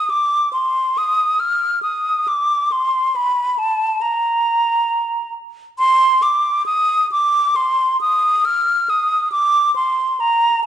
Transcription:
Already playing: D#6
0.10 D6
0.53 C6
0.98 D#6
1.40 F6
1.83 D#6
2.28 D6
2.72 C6
3.16 B5
3.58 A5
4.02 A#5
5.79 C6
6.22 D6
6.66 D#6
7.12 D6
7.56 C6
8.01 D#6
8.45 F6
8.90 D#6
9.32 D6
9.76 C6
10.20 A#5

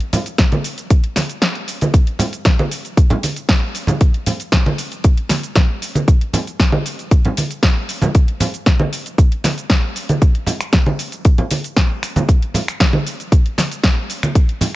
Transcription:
0.00 closed hi-hat
0.13 open hi-hat, low conga, shaker
0.26 closed hi-hat, shaker
0.38 kick, snare, closed hi-hat, shaker
0.52 closed hi-hat, high conga
0.64 open hi-hat, shaker
0.78 closed hi-hat, shaker
0.90 kick, closed hi-hat, shaker
1.04 closed hi-hat
1.16 snare, open hi-hat, high conga, shaker
1.29 closed hi-hat, shaker
1.42 snare, closed hi-hat, shaker
1.55 closed hi-hat
1.68 open hi-hat, shaker
1.81 closed hi-hat, high conga, shaker
1.94 kick, closed hi-hat, shaker
2.07 closed hi-hat
2.19 open hi-hat, low conga, shaker
2.33 closed hi-hat, shaker
2.45 kick, snare, closed hi-hat, shaker
2.59 high conga
2.71 open hi-hat, shaker
2.85 closed hi-hat, shaker
2.97 kick, closed hi-hat, shaker
3.10 closed hi-hat, low conga
3.23 open hi-hat, high conga, shaker
3.36 closed hi-hat, shaker
3.49 kick, snare, closed hi-hat, shaker
3.75 open hi-hat, shaker
3.87 closed hi-hat, high conga, low conga, shaker
4.01 kick, closed hi-hat, shaker
4.14 closed hi-hat
4.26 open hi-hat, low conga, shaker
4.40 closed hi-hat, shaker
4.52 kick, snare, closed hi-hat, shaker
4.66 high conga
4.78 open hi-hat, shaker
4.92 closed hi-hat, shaker
5.04 kick, closed hi-hat, shaker
5.17 closed hi-hat
5.29 snare, open hi-hat, high conga, shaker
5.43 closed hi-hat, shaker
5.55 kick, snare, closed hi-hat, shaker
5.82 open hi-hat, shaker
5.95 closed hi-hat, high conga, shaker
6.08 kick, closed hi-hat, shaker
6.21 closed hi-hat
6.33 open hi-hat, low conga, shaker
6.47 closed hi-hat, shaker
6.60 kick, snare, closed hi-hat, shaker
6.72 high conga
6.86 open hi-hat, shaker
6.99 closed hi-hat, shaker
7.11 kick, closed hi-hat, shaker
7.25 closed hi-hat, low conga
7.37 open hi-hat, high conga, shaker
7.51 closed hi-hat, shaker
7.63 kick, snare, closed hi-hat, shaker
7.89 open hi-hat, shaker
8.02 closed hi-hat, high conga, low conga, shaker
8.15 kick, closed hi-hat, shaker
8.28 closed hi-hat
8.40 open hi-hat, low conga, shaker
8.54 closed hi-hat, shaker
8.66 kick, snare, closed hi-hat, shaker
8.80 high conga
8.93 open hi-hat, shaker
9.06 closed hi-hat, shaker
9.18 kick, closed hi-hat, shaker
9.32 closed hi-hat
9.44 snare, open hi-hat, high conga, shaker
9.58 closed hi-hat, shaker
9.70 kick, snare, closed hi-hat, shaker
9.96 open hi-hat, shaker
10.09 closed hi-hat, high conga, shaker
10.22 kick, closed hi-hat, shaker
10.35 closed hi-hat
10.47 open hi-hat, low conga, shaker
10.61 finger snap, closed hi-hat, shaker
10.73 kick, snare, closed hi-hat, shaker
10.86 high conga
10.99 open hi-hat, shaker
11.12 closed hi-hat, shaker
11.25 kick, closed hi-hat, shaker
11.38 closed hi-hat, low conga
11.51 open hi-hat, high conga, shaker
11.64 closed hi-hat, shaker
11.77 kick, snare, closed hi-hat, shaker
12.03 finger snap, open hi-hat, shaker
12.16 closed hi-hat, high conga, low conga, shaker
12.29 kick, closed hi-hat, shaker
12.42 closed hi-hat
12.54 open hi-hat, low conga, shaker
12.68 finger snap, closed hi-hat, shaker
12.80 kick, snare, closed hi-hat, shaker
12.93 high conga
13.07 open hi-hat, shaker
13.20 closed hi-hat, shaker
13.32 kick, closed hi-hat, shaker
13.46 closed hi-hat
13.58 snare, open hi-hat, high conga, shaker
13.71 closed hi-hat, shaker
13.83 kick, snare, closed hi-hat, shaker
14.10 open hi-hat, shaker
14.23 finger snap, closed hi-hat, high conga, shaker
14.35 kick, closed hi-hat, shaker
14.49 closed hi-hat
14.61 open hi-hat, low conga, shaker

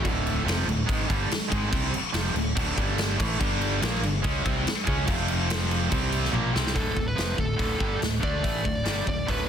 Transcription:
0.04 D1 D2 A2 D3, kick, crash
0.27 crash
0.44 F1 F2 C3 F3
0.48 snare, crash
0.66 D1 D2 A2, crash
0.87 G#1 G#2 D#3 G#3, kick, crash
1.08 G1 G2 D3 G3, kick, crash
1.29 muted distorted electric guitar stroke, muted fingered electric bass stroke, snare, crash
1.50 G#1 G#2 D#3 G#3, kick, crash
1.71 C2 C3 G3 C4, kick, crash
1.92 muted fingered electric bass stroke, muted distorted electric guitar stroke, crash
2.14 F1 F2 C3 F3, snare, crash
2.34 D1 D2 A2, crash
2.55 D1 D2 A2 D3, kick, crash
2.77 G1 G2 D3 G3, kick, crash
2.98 snare, crash
3.17 A1 A2 E3 A3, kick, crash
3.39 G1 G2 D3 G3, kick, crash
3.61 crash
3.81 A#1 A#2 F3 A#3, snare, crash
4.02 G1 G2 D3, crash
4.23 C#2 C#3 G#3 C#4, kick, crash
4.44 C2 C3 G3 C4, kick, crash
4.65 muted distorted electric guitar stroke, muted fingered electric bass stroke, snare, crash
4.85 C#2 C#3 G#3 C#4, kick, crash
5.06 F1 F2 C3 F3, kick, crash
5.11 F3
5.28 crash
5.50 snare, crash
5.71 crash
5.91 C2 C3 G3 C4, kick, crash
6.12 crash
6.25 snare
6.33 A#1 A#2 F3 A#3, high tom
6.55 C2 C3 G3 C4, snare
6.67 snare
6.74 D1 D2 A2 D3 A4, kick, open hi-hat
6.96 D1 D2 A2, kick
7.08 B4
7.15 F1 F2 C3 F3, snare, open hi-hat
7.37 D1 D2 A2 A4, kick
7.56 D1 D2 A2 D3, kick, open hi-hat
7.77 G1 G2 D3 G3, kick
7.99 D1 D2 A2, snare, open hi-hat
8.20 D2 D3 A3 D4 D5, kick
8.43 A1 A2 E3 A3, kick, open hi-hat
8.65 D1 D2 A2, kick
8.84 G1 G2 D3 G3, snare, open hi-hat
9.06 D1 D2 A2 D5, kick
9.25 D1 D2 A2 D3 B4, kick
9.29 open hi-hat

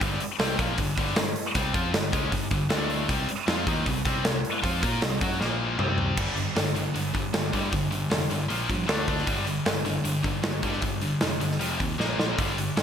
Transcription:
0.00 G1 G2 D3 G3, kick, open hi-hat
0.20 muted picked electric bass stroke, muted distorted electric guitar stroke, open hi-hat
0.39 C2 C3 G3 C4, snare, open hi-hat
0.58 A#1 A#2 F3 A#3, kick, open hi-hat
0.78 G1 G2 D3, kick, open hi-hat
0.97 G1 G2 D3 G3, kick, open hi-hat
1.16 G1 G2 D3, snare, open hi-hat
1.36 open hi-hat
1.55 C2 C3 G3 C4, kick, open hi-hat
1.74 F2 F3 C4 F4, kick, open hi-hat
1.93 G1 G2 D3, snare, open hi-hat
2.12 C#2 C#3 G#3 C#4, kick, open hi-hat
2.32 G1 G2 D3, kick, open hi-hat
2.51 G1 G2 D3, kick, open hi-hat
2.69 D2 D3 A3 D4, snare, open hi-hat
2.90 open hi-hat
3.08 C2 C3 G3 C4, kick, open hi-hat
3.28 muted distorted electric guitar stroke, muted picked electric bass stroke, open hi-hat
3.47 F2 F3 C4 F4, snare, open hi-hat
3.66 D#2 D#3 A#3 D#4, kick, open hi-hat
3.86 C2 C3 G3, kick, open hi-hat
4.05 C2 C3 G3 C4, kick, open hi-hat
4.25 C2 C3 G3, snare, open hi-hat
4.45 open hi-hat
4.62 F2 F3 C4 F4, kick, open hi-hat
4.81 A#2 A#3 F4 A#4, kick, open hi-hat
5.02 C2 C3 G3, snare, open hi-hat
5.21 F#2 F#3 C#4 F#4, kick, open hi-hat
5.40 A#1 A#2 F3 A#3, snare
5.78 C2 C3 G3 C4, mid tom
5.98 floor tom
6.17 G1 G2 D3 G3, kick, crash
6.36 G2 D3, open hi-hat
6.56 G1 G2 D3, snare, open hi-hat
6.75 G2 D3, open hi-hat
6.94 G1 G2 D3, open hi-hat
7.14 G1 G2 D3, kick, open hi-hat
7.33 G1 G2 D3, snare, open hi-hat
7.53 G2 D3 G3, kick, open hi-hat
7.71 G1 G2 D3, kick, open hi-hat
7.91 G2 D3, open hi-hat
8.10 F1 G2 D3, snare, open hi-hat
8.30 G1 G2 D3, open hi-hat
8.48 A#1 A#2 F3 A#3, open hi-hat
8.68 G2 A#2 F3, kick, open hi-hat
8.87 D2 D3 A3 D4, snare, open hi-hat
9.07 D2 D3 A3 D4, kick, open hi-hat
9.18 snare
9.27 G1 G2 D3 G3, kick, open hi-hat
9.46 G2 D3, open hi-hat
9.65 G1 G2 D3, snare, open hi-hat
9.85 G2 D3, open hi-hat
10.04 G1 G2 D3, open hi-hat
10.23 G1 G2 D3, kick, open hi-hat
10.43 G1 G2 D3, snare, open hi-hat
10.63 G2 D3 G3, kick, open hi-hat
10.72 snare
10.82 G1 G2 D3, kick, open hi-hat
11.01 G2 D3, open hi-hat
11.21 F1 G2 D3, snare, open hi-hat
11.40 G1 G2 D3, open hi-hat
11.51 snare
11.59 F1 F2 C3 F3, open hi-hat
11.79 D#2 F2 C3, kick, open hi-hat
11.98 A#1 A#2 F3 A#3, snare
12.18 A#1 A#2 F3 A#3, snare
12.38 G1 G2 D3 G3, kick, open hi-hat
12.58 G2 D3, open hi-hat
12.77 G1 G2 D3, snare, open hi-hat

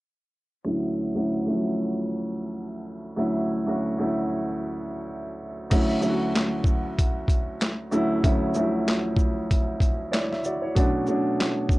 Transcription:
0.65 D2 F#3 A3 C#4 E4
1.15 D2 F#3 A3 C#4 E4
1.46 D2 F3 A3 C#4 E4
1.53 F#3
3.16 D2 F#3 A3 C#4 E4
3.67 D2 F#3 A3 C#4 F#4
3.98 D2 F#3 A3 C#4 E4
5.70 D2 F#3 A3 C#4 E4, kick, closed hi-hat, crash
6.00 D2 F#3 A3 C#4 E4, shaker
6.09 F#4
6.35 snare, clap, closed hi-hat
6.64 kick, shaker
6.98 kick, closed hi-hat
7.28 kick, closed hi-hat, shaker
7.61 snare, clap, closed hi-hat
7.91 D2 F#3 A3 C#4 E4, shaker
8.23 D2 F#3 A3 C#4 E4, kick, closed hi-hat
8.54 D2 F3 A3 C#4 E4, shaker
8.62 F#3
8.88 snare, clap, closed hi-hat
9.17 kick, shaker
9.51 kick, closed hi-hat
9.81 kick, closed hi-hat, shaker
10.12 E4 C#5 D5, snare, clap, closed hi-hat
10.32 E5, snare
10.44 F#4 D5, shaker
10.62 E4 C#5
10.75 B2 F#3 A3 C#4 D4, kick, closed hi-hat
11.06 B2 F#3 A3 C#4 D4, shaker
11.40 snare, clap, closed hi-hat
11.69 kick, shaker

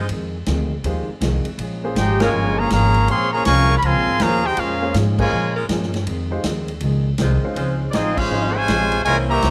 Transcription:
0.09 F2 D#3 G#3, ride
0.13 C4
0.46 D2 F2 D#3 G#3 C4, snare, hi-hat pedal, ride
0.84 D#2 F2 D#3 G#3 C4 D#4 F4 G4 C5, ride
1.08 muted upright bass stroke
1.21 C2 F2 D#3 G#3 C4, snare, hi-hat pedal, ride
1.45 muted upright bass stroke, ride
1.58 A#1 A#2 F3 G#3 C#4, ride
1.84 A#3 C#4 F4 G#4 C5
1.95 G#1 A#2 F3 G#3 C#4 D#4 G4 G#4 C5 G5, snare, hi-hat pedal, ride
2.20 C#3 F3 G#3 A#3 C#4 F4 G#4 A#4 C#5 G#5, snare, ride
2.33 G1 A#2 F3 G#3 C#4
2.59 C#3 F3 A#3 G#4 C#5 F5 A#5
2.70 G#1 A#2 C#3 F3 G#3 A#3 C#4 G#4 C#5 F5 A#5, snare, hi-hat pedal, ride
2.94 ride
3.07 A#1 A#2 F3 G#3 A#3 C4 C#4 F4 G#4 C5 C#5 F5 C6, ride
3.12 C#4 G#4
3.33 C#3 F3 A#3 G#4 C#5 F5 A#5
3.45 C2 A#2 F3 G#3 C#4 A#4 F5 G#5 C#6, snare, hi-hat pedal, ride
3.49 C#4
3.69 G#3 C#4 F4 A#4
3.78 B5
3.82 C#2 A#2 F3 G#3 C4 A#4 F5 G#5 C6, ride
3.86 C#4
3.94 A#1
4.07 G#1
4.19 D#2 A#2 C#3 F3 G#3 A#3 C#4 F4 C5 F5 A#5, snare, hi-hat pedal, ride
4.23 G#4 C#5
4.45 D#4 G4 G#4 C5 G5
4.57 F2 A#2 F3 G#3 C#4 F4 G#4 A#4 F5, ride
4.82 A#3 C#4 F4 G#4 C5
4.94 G#2 A#2 F3 G#3 C#4, snare, hi-hat pedal, ride
5.19 C#3 F3 G#3 A#3 C#4 F4 G#4 A#4 C5 C#5 G#5, kick, crash
5.31 A#2 F3 G#3 C#4
5.55 G#3 C#4 F4 A#4
5.69 G2 A#2 F3 G#3 C#4, snare, hi-hat pedal, ride
5.83 snare
5.94 snare, ride
6.07 F2 D#3 G#3 C4, ride
6.31 G#3 D#4 F4 G4 C5
6.44 D#2 F2 D#3 G#3 C4, snare, hi-hat pedal, ride
6.68 ride
6.80 C#2 F2 D#3 G#3, ride
6.85 C4
7.18 C2 F2 D#3 G#3 C4 D#4 F4 C5, snare, hi-hat pedal, ride
7.44 G#3 C#4 D#4 F4 C5
7.55 C#2 C#3 F3 G#3 C#4 F4 C5, ride
7.59 C4
7.91 A1 C#3 D#4 D5, snare, hi-hat pedal, ride
7.95 F3 G#3 C4 F4 G#4 D#5
8.17 G#3 C#4 F4 G#4 C5 F5, kick, crash
8.30 G#1 C#3 F3 G#3 C4 C#4 D#4 F4 C5
8.55 C3 F3 G#3 F4 C5 C#5 G#5
8.68 A#1 C#3 F3 G#3 C4, snare, hi-hat pedal, ride
8.92 ride
9.05 C2 C3 E3 G#3 A#3 C4 C#4 E4 F4 A#4 C#5 G#5, ride
9.29 E3 G3 A#3 G4 C#5 E5 A#5
9.42 C#2 C3 E3 A#3, snare, hi-hat pedal, ride
9.47 C#4

